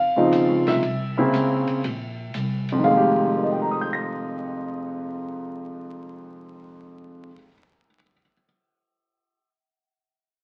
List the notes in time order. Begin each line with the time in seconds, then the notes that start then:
Already playing: F2 F5
0.16 C#3 F3 C4 D#4
0.31 D#2, hi-hat pedal, ride
0.48 C#2
0.65 C2 E5, snare, ride
0.82 C2, ride
1.17 C#3 A#3 C4 E4
1.32 C#2, hi-hat pedal, ride
1.67 muted upright bass stroke, ride
1.84 A#1, ride
2.34 C2, hi-hat pedal, ride
2.69 F2, ride
2.78 D#3
2.84 F1 G#3 F5, kick
2.92 A#3
2.97 G4
3.37 A#4
3.43 D#5
3.52 G5
3.61 A#5
3.71 D#6
3.81 G6
3.93 A#6